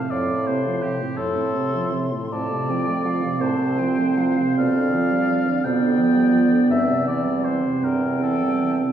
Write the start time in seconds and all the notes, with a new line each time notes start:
Already playing: A2 C4 F5 A5
0.11 F2 A2 D5 F5
0.29 A2
0.47 C3 C5
0.66 F3
0.83 C3 G4
1.01 A2
1.17 F2 A2 A4 C6
1.37 A2
1.54 C3
1.75 F3
1.93 C3
2.13 A2
2.32 F2 A2 C4 D5 A5
2.52 C3
2.70 F3 G5
2.88 A3
3.05 F3 F5
3.23 C3
3.40 C2 A2 C5 A5
3.60 C3
3.78 F3 G5
3.98 A3
4.18 F3 F5
4.38 C3
4.57 F2 B2 D5 F5
4.77 D3
4.93 F3
5.11 G3
5.29 F3
5.46 D3
5.64 F2 B2 B3 D5 G5
5.81 D3
5.99 F3
6.16 G3
6.33 F3
6.51 D3
6.69 E2 G2 C4 E5
6.88 C3
7.06 E3 D5
7.25 G3
7.45 E3 C5
7.63 C3
7.83 E2 G2 A#4 G5
8.02 C3
8.22 E3 A4
8.42 G3
8.62 E3
8.82 C3